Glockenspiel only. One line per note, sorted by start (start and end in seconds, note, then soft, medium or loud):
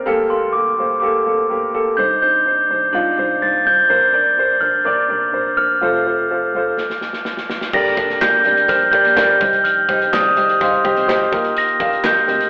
0.30 0.55 C6 medium
0.53 0.99 D6 medium
1.00 1.69 D6 medium
1.97 2.20 G6 medium
2.22 3.14 G6 medium
3.42 3.67 A6 medium
3.67 4.65 G6 medium
4.61 4.86 F6 medium
4.85 5.30 D6 medium
5.57 6.97 F6 medium
7.74 8.23 A#6 loud
8.21 8.71 G6 loud
8.69 8.91 F6 medium
8.91 9.66 G6 loud
9.64 10.14 F6 medium
10.13 10.57 D#6 medium
10.62 11.06 C6 medium
11.58 12.07 A#6 loud
12.06 12.50 G6 loud